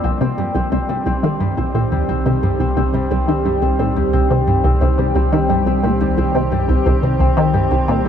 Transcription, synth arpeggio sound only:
0, 0, Header, 1, 2, 480
1, 0, Start_track
1, 0, Key_signature, -3, "minor"
1, 0, Tempo, 681818
1, 29, Time_signature, 4, 2, 24, 8
1, 5691, End_track
2, 0, Start_track
2, 0, Title_t, "Synth arpeggio sound"
2, 0, Program_c, 0, 84
2, 26, Note_on_c, 0, 36, 81
2, 93, Note_off_c, 0, 36, 0
2, 146, Note_on_c, 0, 48, 103
2, 213, Note_off_c, 0, 48, 0
2, 265, Note_on_c, 0, 43, 73
2, 332, Note_off_c, 0, 43, 0
2, 384, Note_on_c, 0, 36, 100
2, 426, Note_off_c, 0, 36, 0
2, 506, Note_on_c, 0, 36, 99
2, 547, Note_off_c, 0, 36, 0
2, 627, Note_on_c, 0, 48, 74
2, 726, Note_off_c, 0, 48, 0
2, 745, Note_on_c, 0, 36, 97
2, 812, Note_off_c, 0, 36, 0
2, 866, Note_on_c, 0, 51, 96
2, 965, Note_off_c, 0, 51, 0
2, 987, Note_on_c, 0, 43, 80
2, 1027, Note_off_c, 0, 43, 0
2, 1108, Note_on_c, 0, 36, 78
2, 1174, Note_off_c, 0, 36, 0
2, 1227, Note_on_c, 0, 46, 93
2, 1293, Note_off_c, 0, 46, 0
2, 1349, Note_on_c, 0, 39, 73
2, 1414, Note_off_c, 0, 39, 0
2, 1469, Note_on_c, 0, 36, 80
2, 1534, Note_off_c, 0, 36, 0
2, 1588, Note_on_c, 0, 48, 104
2, 1654, Note_off_c, 0, 48, 0
2, 1707, Note_on_c, 0, 43, 76
2, 1773, Note_off_c, 0, 43, 0
2, 1827, Note_on_c, 0, 36, 97
2, 1867, Note_off_c, 0, 36, 0
2, 1948, Note_on_c, 0, 36, 103
2, 1988, Note_off_c, 0, 36, 0
2, 2067, Note_on_c, 0, 48, 76
2, 2166, Note_off_c, 0, 48, 0
2, 2188, Note_on_c, 0, 36, 99
2, 2254, Note_off_c, 0, 36, 0
2, 2309, Note_on_c, 0, 51, 94
2, 2407, Note_off_c, 0, 51, 0
2, 2430, Note_on_c, 0, 43, 83
2, 2469, Note_off_c, 0, 43, 0
2, 2549, Note_on_c, 0, 36, 77
2, 2614, Note_off_c, 0, 36, 0
2, 2670, Note_on_c, 0, 46, 96
2, 2734, Note_off_c, 0, 46, 0
2, 2790, Note_on_c, 0, 39, 76
2, 2854, Note_off_c, 0, 39, 0
2, 2910, Note_on_c, 0, 36, 79
2, 2975, Note_off_c, 0, 36, 0
2, 3029, Note_on_c, 0, 48, 102
2, 3094, Note_off_c, 0, 48, 0
2, 3148, Note_on_c, 0, 43, 70
2, 3214, Note_off_c, 0, 43, 0
2, 3267, Note_on_c, 0, 36, 102
2, 3307, Note_off_c, 0, 36, 0
2, 3388, Note_on_c, 0, 36, 99
2, 3427, Note_off_c, 0, 36, 0
2, 3506, Note_on_c, 0, 48, 77
2, 3605, Note_off_c, 0, 48, 0
2, 3625, Note_on_c, 0, 36, 100
2, 3692, Note_off_c, 0, 36, 0
2, 3748, Note_on_c, 0, 51, 98
2, 3846, Note_off_c, 0, 51, 0
2, 3867, Note_on_c, 0, 43, 85
2, 3907, Note_off_c, 0, 43, 0
2, 3986, Note_on_c, 0, 36, 78
2, 4053, Note_off_c, 0, 36, 0
2, 4105, Note_on_c, 0, 46, 100
2, 4172, Note_off_c, 0, 46, 0
2, 4229, Note_on_c, 0, 39, 73
2, 4294, Note_off_c, 0, 39, 0
2, 4348, Note_on_c, 0, 36, 84
2, 4414, Note_off_c, 0, 36, 0
2, 4467, Note_on_c, 0, 48, 101
2, 4533, Note_off_c, 0, 48, 0
2, 4587, Note_on_c, 0, 43, 72
2, 4653, Note_off_c, 0, 43, 0
2, 4707, Note_on_c, 0, 36, 100
2, 4747, Note_off_c, 0, 36, 0
2, 4829, Note_on_c, 0, 36, 100
2, 4868, Note_off_c, 0, 36, 0
2, 4948, Note_on_c, 0, 48, 78
2, 5046, Note_off_c, 0, 48, 0
2, 5066, Note_on_c, 0, 36, 93
2, 5133, Note_off_c, 0, 36, 0
2, 5188, Note_on_c, 0, 51, 101
2, 5286, Note_off_c, 0, 51, 0
2, 5308, Note_on_c, 0, 43, 77
2, 5348, Note_off_c, 0, 43, 0
2, 5427, Note_on_c, 0, 36, 75
2, 5493, Note_off_c, 0, 36, 0
2, 5548, Note_on_c, 0, 46, 100
2, 5613, Note_off_c, 0, 46, 0
2, 5669, Note_on_c, 0, 39, 72
2, 5691, Note_off_c, 0, 39, 0
2, 5691, End_track
0, 0, End_of_file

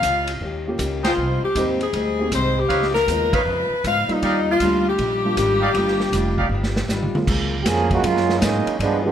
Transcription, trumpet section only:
0, 0, Header, 1, 2, 480
1, 0, Start_track
1, 0, Tempo, 381437
1, 1470, Time_signature, 4, 2, 24, 8
1, 11474, End_track
2, 0, Start_track
2, 0, Title_t, "Trumpet section"
2, 0, Program_c, 0, 61
2, 1301, Note_on_c, 0, 63, 78
2, 1301, Note_on_c, 0, 79, 85
2, 1303, Note_on_c, 0, 72, 67
2, 1304, Note_on_c, 0, 68, 65
2, 1414, Note_off_c, 0, 63, 0
2, 1414, Note_off_c, 0, 79, 0
2, 1415, Note_off_c, 0, 72, 0
2, 1416, Note_off_c, 0, 68, 0
2, 3379, Note_on_c, 0, 77, 84
2, 3381, Note_on_c, 0, 71, 68
2, 3382, Note_on_c, 0, 63, 71
2, 3385, Note_on_c, 0, 73, 69
2, 3596, Note_off_c, 0, 77, 0
2, 3598, Note_off_c, 0, 71, 0
2, 3599, Note_off_c, 0, 63, 0
2, 3601, Note_off_c, 0, 73, 0
2, 4190, Note_on_c, 0, 77, 81
2, 4193, Note_on_c, 0, 71, 68
2, 4193, Note_on_c, 0, 73, 67
2, 4194, Note_on_c, 0, 63, 81
2, 4300, Note_off_c, 0, 77, 0
2, 4302, Note_off_c, 0, 71, 0
2, 4302, Note_off_c, 0, 73, 0
2, 4303, Note_off_c, 0, 63, 0
2, 5313, Note_on_c, 0, 63, 78
2, 5313, Note_on_c, 0, 67, 69
2, 5313, Note_on_c, 0, 74, 71
2, 5314, Note_on_c, 0, 77, 88
2, 5526, Note_off_c, 0, 63, 0
2, 5526, Note_off_c, 0, 67, 0
2, 5526, Note_off_c, 0, 74, 0
2, 5527, Note_off_c, 0, 77, 0
2, 7060, Note_on_c, 0, 63, 77
2, 7064, Note_on_c, 0, 77, 84
2, 7066, Note_on_c, 0, 74, 70
2, 7068, Note_on_c, 0, 67, 66
2, 7174, Note_off_c, 0, 63, 0
2, 7177, Note_off_c, 0, 77, 0
2, 7178, Note_off_c, 0, 74, 0
2, 7180, Note_off_c, 0, 67, 0
2, 8025, Note_on_c, 0, 74, 63
2, 8026, Note_on_c, 0, 63, 68
2, 8030, Note_on_c, 0, 67, 62
2, 8032, Note_on_c, 0, 77, 77
2, 8138, Note_off_c, 0, 63, 0
2, 8138, Note_off_c, 0, 74, 0
2, 8140, Note_off_c, 0, 67, 0
2, 8142, Note_off_c, 0, 77, 0
2, 11474, End_track
0, 0, End_of_file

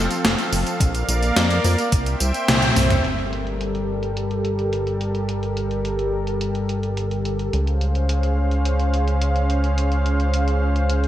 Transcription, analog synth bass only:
0, 0, Header, 1, 2, 480
1, 0, Start_track
1, 0, Tempo, 560748
1, 687, Time_signature, 4, 2, 24, 8
1, 9482, End_track
2, 0, Start_track
2, 0, Title_t, "Analog synth bass"
2, 0, Program_c, 0, 38
2, 211, Note_on_c, 0, 29, 83
2, 307, Note_off_c, 0, 29, 0
2, 450, Note_on_c, 0, 29, 83
2, 547, Note_off_c, 0, 29, 0
2, 688, Note_on_c, 0, 34, 95
2, 885, Note_off_c, 0, 34, 0
2, 929, Note_on_c, 0, 34, 80
2, 1125, Note_off_c, 0, 34, 0
2, 1168, Note_on_c, 0, 41, 98
2, 1365, Note_off_c, 0, 41, 0
2, 1408, Note_on_c, 0, 41, 102
2, 1506, Note_off_c, 0, 41, 0
2, 1647, Note_on_c, 0, 36, 81
2, 1844, Note_off_c, 0, 36, 0
2, 1888, Note_on_c, 0, 36, 94
2, 1986, Note_off_c, 0, 36, 0
2, 2130, Note_on_c, 0, 36, 88
2, 2325, Note_off_c, 0, 36, 0
2, 2369, Note_on_c, 0, 36, 88
2, 2565, Note_off_c, 0, 36, 0
2, 2607, Note_on_c, 0, 31, 85
2, 6423, Note_off_c, 0, 31, 0
2, 6449, Note_on_c, 0, 37, 85
2, 9482, Note_off_c, 0, 37, 0
2, 9482, End_track
0, 0, End_of_file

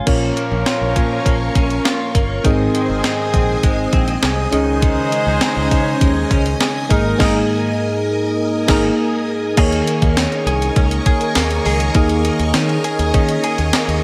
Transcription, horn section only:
0, 0, Header, 1, 2, 480
1, 0, Start_track
1, 0, Tempo, 594059
1, 58, Time_signature, 4, 2, 24, 8
1, 11341, End_track
2, 0, Start_track
2, 0, Title_t, "Horn section"
2, 0, Program_c, 0, 61
2, 56, Note_on_c, 0, 53, 78
2, 57, Note_on_c, 0, 70, 86
2, 58, Note_on_c, 0, 61, 77
2, 1705, Note_off_c, 0, 53, 0
2, 1705, Note_off_c, 0, 70, 0
2, 1706, Note_off_c, 0, 61, 0
2, 1977, Note_on_c, 0, 51, 80
2, 1978, Note_on_c, 0, 60, 80
2, 1978, Note_on_c, 0, 68, 92
2, 3389, Note_off_c, 0, 51, 0
2, 3389, Note_off_c, 0, 60, 0
2, 3389, Note_off_c, 0, 68, 0
2, 3657, Note_on_c, 0, 63, 90
2, 3657, Note_on_c, 0, 72, 100
2, 3658, Note_on_c, 0, 56, 86
2, 5305, Note_off_c, 0, 63, 0
2, 5305, Note_off_c, 0, 72, 0
2, 5306, Note_off_c, 0, 56, 0
2, 5579, Note_on_c, 0, 63, 79
2, 5580, Note_on_c, 0, 70, 86
2, 5811, Note_off_c, 0, 63, 0
2, 5814, Note_off_c, 0, 70, 0
2, 5821, Note_on_c, 0, 63, 96
2, 5822, Note_on_c, 0, 70, 99
2, 5942, Note_off_c, 0, 63, 0
2, 5943, Note_off_c, 0, 70, 0
2, 7020, Note_on_c, 0, 63, 99
2, 7020, Note_on_c, 0, 70, 96
2, 7142, Note_off_c, 0, 63, 0
2, 7142, Note_off_c, 0, 70, 0
2, 11341, End_track
0, 0, End_of_file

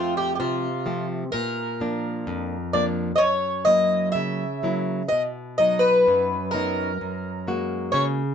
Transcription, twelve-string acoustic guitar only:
0, 0, Header, 1, 2, 480
1, 0, Start_track
1, 0, Key_signature, 6, "major"
1, 0, Tempo, 933126
1, 687, Time_signature, 2, 2, 24, 8
1, 1647, Tempo, 953895
1, 3087, Tempo, 933126
1, 4261, End_track
2, 0, Start_track
2, 0, Title_t, "Twelve-string acoustic guitar"
2, 0, Program_c, 0, 25
2, 0, Note_on_c, 0, 65, 71
2, 86, Note_off_c, 0, 65, 0
2, 88, Note_on_c, 0, 67, 82
2, 166, Note_off_c, 0, 67, 0
2, 182, Note_on_c, 0, 67, 59
2, 202, Note_off_c, 0, 67, 0
2, 204, Note_on_c, 0, 65, 79
2, 545, Note_off_c, 0, 65, 0
2, 679, Note_on_c, 0, 70, 94
2, 1404, Note_off_c, 0, 70, 0
2, 1406, Note_on_c, 0, 74, 85
2, 1461, Note_off_c, 0, 74, 0
2, 1623, Note_on_c, 0, 75, 76
2, 1635, Note_on_c, 0, 73, 97
2, 1652, Note_off_c, 0, 75, 0
2, 1871, Note_on_c, 0, 75, 94
2, 1885, Note_off_c, 0, 73, 0
2, 2106, Note_off_c, 0, 75, 0
2, 2108, Note_on_c, 0, 76, 88
2, 2457, Note_off_c, 0, 76, 0
2, 2595, Note_on_c, 0, 75, 86
2, 2661, Note_off_c, 0, 75, 0
2, 2843, Note_on_c, 0, 75, 88
2, 2951, Note_on_c, 0, 71, 86
2, 2968, Note_off_c, 0, 75, 0
2, 3317, Note_on_c, 0, 70, 92
2, 3333, Note_off_c, 0, 71, 0
2, 4039, Note_off_c, 0, 70, 0
2, 4041, Note_on_c, 0, 73, 87
2, 4106, Note_off_c, 0, 73, 0
2, 4261, End_track
0, 0, End_of_file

